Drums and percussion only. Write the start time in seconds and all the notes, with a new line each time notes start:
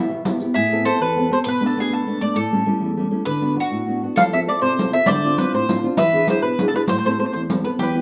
0.25 riq
0.40 riq
4.17 riq
4.79 riq
5.06 riq
5.38 riq
5.69 riq
5.97 riq
6.27 riq
6.59 riq
6.88 riq
7.03 riq
7.33 riq
7.50 riq
7.79 riq